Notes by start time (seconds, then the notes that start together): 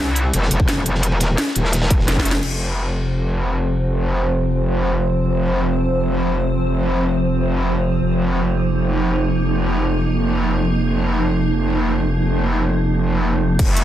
0.00 C2
0.15 closed hi-hat, ride
0.34 F1, closed hi-hat, ride
0.42 snare
0.51 F1, closed hi-hat, ride
0.60 kick, ride
0.68 snare, closed hi-hat, ride
0.86 closed hi-hat, ride
0.94 snare
1.03 closed hi-hat, ride
1.12 E1, ride
1.20 snare, closed hi-hat, ride
1.38 snare, closed hi-hat, ride
1.47 snare
1.55 D#1, closed hi-hat, ride
1.65 snare
1.72 snare, closed hi-hat, ride
1.82 snare, ride
1.90 kick, closed hi-hat, ride
2.00 snare
2.08 F1, snare, closed hi-hat, ride
2.17 kick, snare
2.25 snare, closed hi-hat, ride
2.31 snare
2.34 snare, ride
2.43 F1 F3 C4 C5, crash
8.01 F1 A#3 D#4
13.59 F1 F3 C4 C5, kick, closed hi-hat, crash, ride
13.76 closed hi-hat, ride